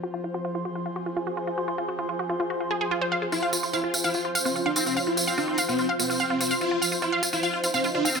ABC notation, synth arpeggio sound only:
X:1
M:4/4
L:1/16
Q:1/4=146
K:Fm
V:1 name="Synth arpeggio sound"
_G F F G F F G F F G F F G F F G | F F _G F F G F F G F A A F c f A | F f F F f F F f F F f F F f F F | f F F f F F f F F f F F f F F f |
F F f F F f F F f F F f F F f F |]